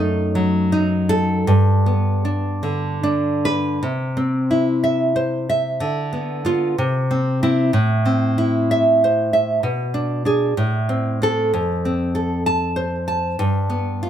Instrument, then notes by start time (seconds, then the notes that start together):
nylon-string guitar
Already playing: F#2 A3 D#4
0.35 F#3
0.72 D#4
1.09 A4
1.47 G2
1.86 B3
2.25 D4
2.63 D3
3.03 D4
3.45 B4
3.83 C3
4.17 C4
4.51 E4
4.84 E5
5.16 C5
5.49 E5
5.80 D3
6.13 B3
6.45 B3 F4
6.78 C3
7.11 C4
7.43 C4 E4
7.73 A2
8.06 C4
8.38 E4
8.71 E5
9.04 C5
9.33 E5
9.63 B2
9.94 D4
10.25 D4 G#4
10.57 A2
10.89 C4
11.22 C4 A4
11.54 F2
11.85 C4
12.15 A4
12.46 A5
12.76 C5
13.08 A5
13.39 G2
13.70 B3
14.03 F4